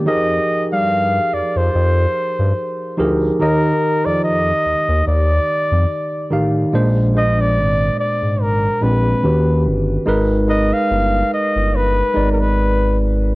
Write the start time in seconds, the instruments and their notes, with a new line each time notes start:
0.06 analog synth bass F2, tine electric piano F3 D#4 G4 G#4 A#4, flugelhorn D#5
0.72 analog synth bass G2, flugelhorn F5
1.33 analog synth bass F2, flugelhorn D5
1.56 analog synth bass F2, flugelhorn C5
1.75 analog synth bass F2
2.39 analog synth bass G2
2.97 analog synth bass D2, tine electric piano F3 D#4 G4 G#4 A#4
3.39 analog synth bass D#2, tine electric piano D#3 D#4 G4 D#5, flugelhorn A#4
4.05 analog synth bass F2, flugelhorn D5
4.24 flugelhorn D#5
4.66 analog synth bass D#2
4.89 analog synth bass D#2
5.07 analog synth bass D#2, flugelhorn D5
5.72 analog synth bass F2
6.31 analog synth bass A1, tine electric piano D#3 D#4 G4 F5
6.73 analog synth bass A#1, tine electric piano A#2 G#3 D4 C5
7.14 tine electric piano A#2 G#3 D4 C5, flugelhorn D#5
7.41 flugelhorn D5
7.58 analog synth bass G#1
8.00 flugelhorn D5
8.22 analog synth bass G#1
8.42 flugelhorn A#4
8.81 analog synth bass A#1, tine electric piano A#2 G#3 C4 D4, flugelhorn B4
9.23 analog synth bass D#2, tine electric piano D#3 C#4 F#4 G4 B4
9.66 analog synth bass G1
10.06 analog synth bass G#1, tine electric piano G#3 D#4 A#4 B4
10.47 tine electric piano G#3 D#4 A#4 B4, flugelhorn D#5
10.73 flugelhorn F5
10.91 analog synth bass G1
11.34 flugelhorn D#5
11.56 analog synth bass G1
11.76 flugelhorn B4
12.14 analog synth bass G#1, tine electric piano G#3 D#4 B4 D5
12.32 flugelhorn A#4
12.40 flugelhorn B4